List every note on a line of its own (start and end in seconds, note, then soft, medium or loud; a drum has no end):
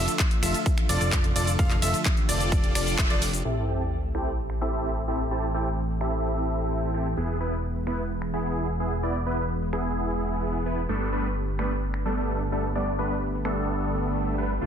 0.00 3.41 D3 medium
0.00 3.41 F3 medium
0.00 3.41 A3 medium
0.00 0.10 F4 medium
0.00 1.57 F4 medium
0.00 0.10 A4 medium
0.00 0.10 E5 medium
0.00 0.10 E5 loud
0.08 closed hi-hat soft
0.08 cabasa soft
0.19 kick loud
0.19 clap loud
0.19 closed hi-hat medium
0.19 cabasa soft
0.31 closed hi-hat soft
0.43 0.54 F1 loud
0.43 0.57 F4 medium
0.43 0.57 A4 medium
0.43 0.57 E5 loud
0.43 finger snap medium
0.43 open hi-hat loud
0.43 ride medium
0.43 cabasa medium
0.54 closed hi-hat soft
0.54 cabasa soft
0.66 kick loud
0.66 closed hi-hat medium
0.66 cabasa soft
0.78 finger snap medium
0.78 closed hi-hat soft
0.89 0.99 F1 loud
0.89 0.99 F4 medium
0.89 0.99 A4 medium
0.89 0.99 D5 loud
0.89 open hi-hat loud
0.89 ride medium
0.89 cabasa medium
1.01 1.33 F1 loud
1.01 1.23 F4 medium
1.01 1.23 A4 medium
1.01 1.23 D5 medium
1.01 closed hi-hat soft
1.01 cabasa soft
1.12 kick loud
1.12 clap loud
1.12 closed hi-hat medium
1.12 cabasa soft
1.24 closed hi-hat soft
1.36 1.57 F1 loud
1.36 1.50 F4 medium
1.36 1.50 A4 medium
1.36 1.50 D5 medium
1.36 open hi-hat loud
1.36 ride medium
1.36 cabasa medium
1.47 closed hi-hat soft
1.47 cabasa soft
1.59 1.80 F1 loud
1.59 1.73 F4 loud
1.59 3.43 G4 medium
1.59 1.73 A4 medium
1.59 1.73 F5 loud
1.59 kick loud
1.59 closed hi-hat medium
1.59 cabasa soft
1.70 clap soft
1.70 closed hi-hat soft
1.82 1.94 F1 loud
1.82 1.96 F4 loud
1.82 1.96 A4 medium
1.82 1.96 E5 loud
1.82 open hi-hat loud
1.82 ride medium
1.82 cabasa medium
1.94 closed hi-hat soft
1.94 cabasa soft
2.05 kick loud
2.05 clap loud
2.05 closed hi-hat medium
2.05 cabasa soft
2.17 closed hi-hat soft
2.29 2.73 F1 loud
2.29 2.73 F4 medium
2.29 2.73 A4 medium
2.29 2.73 D5 medium
2.29 open hi-hat loud
2.29 ride medium
2.29 cabasa medium
2.40 closed hi-hat soft
2.40 cabasa soft
2.52 kick loud
2.52 closed hi-hat medium
2.52 cabasa soft
2.64 closed hi-hat soft
2.75 2.96 F1 loud
2.75 2.96 F4 medium
2.75 2.96 A4 medium
2.75 2.96 D5 medium
2.75 finger snap medium
2.75 open hi-hat loud
2.75 ride medium
2.75 cabasa medium
2.87 open hi-hat medium
2.87 cabasa soft
2.98 3.08 F1 loud
2.98 3.07 F4 medium
2.98 3.07 A4 medium
2.98 3.07 E5 loud
2.98 kick loud
2.98 clap loud
2.98 closed hi-hat medium
2.98 cabasa soft
3.10 3.43 F1 loud
3.10 3.24 F4 loud
3.10 3.24 A4 medium
3.10 3.24 D5 loud
3.10 closed hi-hat soft
3.22 open hi-hat loud
3.22 ride medium
3.22 cabasa medium
3.33 closed hi-hat soft
3.33 cabasa soft
3.45 7.15 A1 medium
3.45 10.85 E3 medium
3.45 7.13 A3 medium
3.45 7.13 C4 medium
3.45 3.65 C4 medium
3.45 3.65 E4 medium
3.45 5.29 G4 medium
3.45 3.65 G4 medium
3.45 3.65 A4 medium
3.45 3.65 E5 medium
3.45 sub drop medium
3.68 3.82 C4 medium
3.68 3.82 E4 medium
3.68 3.82 G4 medium
3.68 3.82 A4 medium
3.68 3.82 G5 medium
4.15 4.29 C4 medium
4.15 4.29 E4 medium
4.15 4.29 G4 medium
4.15 4.29 A4 medium
4.15 4.29 G5 medium
4.15 finger snap medium
4.50 finger snap medium
4.61 4.71 C4 medium
4.61 4.71 E4 medium
4.61 4.71 G4 medium
4.61 4.71 A4 medium
4.61 4.71 E5 medium
4.73 4.95 C4 medium
4.73 4.95 E4 medium
4.73 4.95 G4 medium
4.73 4.95 A4 medium
4.73 4.95 E5 medium
5.08 5.22 C4 medium
5.08 5.22 E4 medium
5.08 5.22 G4 medium
5.08 5.22 A4 medium
5.08 5.22 E5 medium
5.31 5.45 C4 medium
5.31 5.45 E4 medium
5.31 5.45 G4 medium
5.31 5.45 A4 medium
5.31 7.15 A4 medium
5.31 5.45 A5 loud
5.54 5.68 C4 medium
5.54 5.68 E4 medium
5.54 5.68 G4 medium
5.54 5.68 A4 medium
5.54 5.68 G5 loud
6.01 6.91 C4 medium
6.01 6.91 E4 medium
6.01 6.91 G4 medium
6.01 6.91 A4 medium
6.01 6.91 E5 medium
6.01 finger snap medium
6.94 7.08 C4 medium
6.94 7.08 E4 medium
6.94 7.08 G4 medium
6.94 7.08 A4 medium
6.94 7.08 G5 medium
7.17 10.87 E1 medium
7.17 10.86 G#3 medium
7.17 10.86 B3 medium
7.17 7.37 B3 medium
7.17 7.37 E4 medium
7.17 10.86 G#4 medium
7.17 7.37 G#4 medium
7.40 7.54 B3 medium
7.40 7.54 E4 medium
7.40 7.54 B4 medium
7.87 8.01 B3 medium
7.87 8.01 E4 medium
7.87 8.01 B4 medium
7.87 finger snap medium
8.22 finger snap medium
8.33 8.43 B3 medium
8.33 8.43 E4 medium
8.33 8.43 G#4 medium
8.45 8.67 B3 medium
8.45 8.67 E4 medium
8.45 8.67 G#4 medium
8.80 8.94 B3 medium
8.80 8.94 E4 medium
8.80 8.94 G#4 medium
9.03 9.17 B3 medium
9.03 9.17 E4 medium
9.03 9.17 D5 loud
9.26 9.40 B3 medium
9.26 9.40 E4 medium
9.26 9.40 B4 loud
9.73 10.63 B3 medium
9.73 10.63 E4 medium
9.73 10.63 G#4 medium
9.73 finger snap medium
10.66 10.80 B3 medium
10.66 10.80 E4 medium
10.66 10.80 B4 medium
10.89 14.59 G1 medium
10.89 14.66 D3 medium
10.89 11.09 G3 medium
10.89 11.09 A3 medium
10.89 14.66 A3 medium
10.89 11.09 B3 medium
10.89 14.58 B3 medium
10.89 11.09 D4 medium
10.89 14.58 G4 medium
10.89 11.09 A4 medium
11.12 11.26 G3 medium
11.12 11.26 A3 medium
11.12 11.27 B3 medium
11.12 11.26 D4 medium
11.12 11.26 B4 medium
11.59 11.73 G3 medium
11.59 11.73 A3 medium
11.59 11.73 B3 medium
11.59 11.73 D4 medium
11.59 11.73 B4 medium
11.59 finger snap medium
11.94 finger snap medium
12.06 12.15 G3 medium
12.06 12.15 A3 medium
12.06 12.15 B3 medium
12.06 12.15 D4 medium
12.06 12.15 A4 loud
12.17 12.40 G3 medium
12.17 12.40 A3 medium
12.17 12.40 B3 medium
12.17 12.40 D4 medium
12.17 12.40 A4 medium
12.52 12.66 G3 medium
12.52 12.66 A3 medium
12.52 12.66 B3 medium
12.52 12.66 D4 medium
12.52 12.66 A4 medium
12.75 12.89 G3 loud
12.75 12.89 A3 medium
12.75 12.89 B3 medium
12.75 12.89 D4 medium
12.75 12.89 D5 loud
12.99 13.13 G3 medium
12.99 13.13 A3 medium
12.99 13.13 B3 medium
12.99 13.13 D4 medium
12.99 13.13 B4 loud
13.45 14.35 G3 medium
13.45 14.35 A3 medium
13.45 14.35 B3 medium
13.45 14.35 D4 medium
13.45 14.35 A4 medium
13.45 finger snap medium
14.38 14.52 G3 medium
14.38 14.52 A3 medium
14.38 14.52 B3 medium
14.38 14.52 D4 medium
14.38 14.52 B4 medium
14.61 14.66 F1 medium
14.61 14.66 F3 medium
14.61 14.66 A3 medium
14.61 14.66 D4 medium
14.61 14.66 F4 medium
14.61 14.66 F4 loud